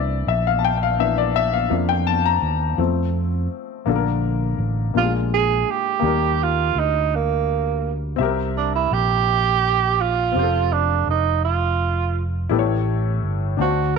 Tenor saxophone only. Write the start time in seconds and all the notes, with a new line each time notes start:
4.97 F4
5.34 G#4
5.71 G4
6.43 F4
6.79 D#4
7.15 A#3
8.58 D4
8.76 E4
8.93 G4
10.01 F4
10.73 D4
11.10 D#4
11.45 F4
13.61 F#4